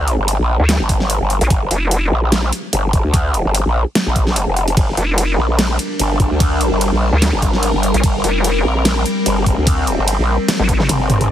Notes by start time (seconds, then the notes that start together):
Already playing: D2
0.08 closed hi-hat
0.19 G1
0.28 closed hi-hat
0.39 A#1
0.60 D2
0.69 snare, closed hi-hat
0.80 G#1
0.89 kick, closed hi-hat
1.00 snare
1.10 closed hi-hat
1.21 G1
1.30 closed hi-hat
1.41 A#1, closed hi-hat
1.50 G1, kick, closed hi-hat
1.71 F1, closed hi-hat
1.91 closed hi-hat
2.12 A#1
2.32 snare, closed hi-hat
2.53 closed hi-hat
2.73 G1, closed hi-hat
2.93 G1, kick, closed hi-hat
3.04 D2
3.14 kick, closed hi-hat
3.34 closed hi-hat
3.45 G1
3.55 closed hi-hat
3.66 A#1
3.95 snare, closed hi-hat
4.06 A#1
4.16 kick, closed hi-hat
4.27 snare
4.36 closed hi-hat
4.47 F1
4.57 closed hi-hat
4.68 closed hi-hat
4.77 G1 G3 D4 A#4, kick, closed hi-hat, ride
4.97 F1, closed hi-hat
5.18 closed hi-hat, ride
5.38 A#1
5.59 snare, closed hi-hat, ride
5.79 closed hi-hat
5.99 G1, closed hi-hat, ride
6.20 G1, kick, closed hi-hat
6.31 D2
6.40 kick, closed hi-hat, ride
6.61 closed hi-hat
6.72 G1
6.81 closed hi-hat, ride
6.92 A#1
7.13 D2
7.22 snare, closed hi-hat, ride
7.33 G#1
7.42 kick, closed hi-hat
7.53 snare
7.63 closed hi-hat, ride
7.74 G1
7.83 closed hi-hat
7.94 A#1, closed hi-hat
8.04 G1 C4, kick, closed hi-hat, ride
8.24 F1, closed hi-hat
8.44 closed hi-hat, ride
8.65 A#1
8.85 snare, closed hi-hat, ride
9.06 closed hi-hat
9.26 G1, closed hi-hat, ride
9.46 G1, kick, closed hi-hat
9.58 D2
9.67 kick, closed hi-hat, ride
9.87 closed hi-hat
9.98 G1
10.08 closed hi-hat, ride
10.19 A#1
10.48 snare, closed hi-hat, high tom, ride
10.59 G#1, high tom
10.69 kick, closed hi-hat
10.80 snare, mid tom
10.89 G1, closed hi-hat, mid tom, ride
11.10 closed hi-hat, mid tom
11.21 closed hi-hat, mid tom